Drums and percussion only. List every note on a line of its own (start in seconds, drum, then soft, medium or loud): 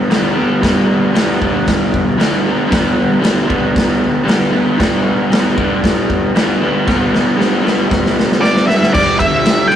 0.11 snare loud
0.11 open hi-hat medium
0.63 kick loud
0.63 snare loud
0.63 open hi-hat medium
1.15 snare loud
1.15 open hi-hat medium
1.42 kick medium
1.67 kick loud
1.67 snare loud
1.67 open hi-hat soft
1.94 kick medium
2.20 snare loud
2.20 open hi-hat medium
2.72 kick loud
2.72 snare loud
2.72 open hi-hat medium
3.24 snare loud
3.24 open hi-hat medium
3.50 kick medium
3.76 kick loud
3.76 snare loud
3.76 open hi-hat medium
4.28 snare loud
4.28 open hi-hat medium
4.80 kick loud
4.80 snare loud
4.80 open hi-hat soft
5.32 snare loud
5.32 open hi-hat medium
5.58 kick medium
5.84 kick loud
5.84 snare loud
5.84 open hi-hat soft
6.10 kick medium
6.36 snare loud
6.36 open hi-hat medium
6.88 kick loud
6.88 snare medium
7.14 snare medium
7.41 snare medium
7.67 snare medium
7.91 kick loud
7.91 snare medium
8.06 snare medium
8.19 snare medium
8.32 snare medium
8.44 snare loud
8.56 snare medium
8.69 snare medium
8.83 snare medium
8.94 kick loud
8.94 crash loud
9.20 kick medium
9.20 ride medium
9.45 snare loud
9.45 ride loud
9.72 ride medium